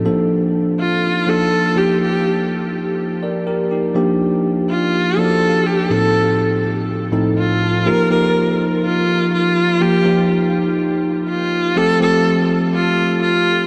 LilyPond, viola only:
\new Staff \with { instrumentName = "Viola" } { \time 4/4 \key ees \lydian \tempo 4 = 123 r4. f'4 a'4 g'8 | g'4 r2. | r4. f'4 a'4 g'8 | a'4 r2 f'4 |
bes'8 bes'4 r8 f'4 f'4 | g'4 r2 f'4 | a'8 a'4 r8 f'4 f'4 | }